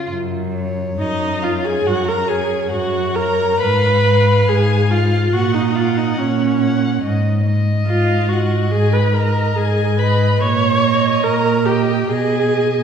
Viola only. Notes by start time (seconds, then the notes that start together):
0.99 D#4
1.44 F4
1.65 G#4
1.87 F#4
2.09 A#4
2.29 G#4
2.73 F#4
3.16 A#4
3.61 B4
4.49 G#4
4.91 F4
5.33 F#4
5.54 D#4
5.76 F4
5.97 D#4
6.19 C#4
7.87 F4
8.29 F#4
8.71 G#4
8.93 B4
9.14 A#4
9.56 G#4
10.00 B4
10.41 C#5
11.24 A#4
11.66 G4
12.09 G#4